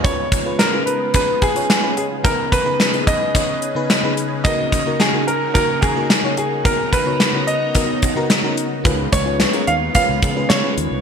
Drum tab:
HH |x-x-x-x-x-xxx-x-|x-x-xxx-x-x-x-x-|x-x-x-x-x-x-x-x-|x-x-x-x-x-x-x-x-|
SD |----o-------o---|----o-------o---|----o-------o---|----o-------o---|
BD |o-o-----o-o-----|o-o---o-o-------|o-o-----o-o-----|o-o-----o-o-----|

HH |x-x-xxx-x-x-x-x-|
SD |----o-------o---|
BD |o-o-----o-o-----|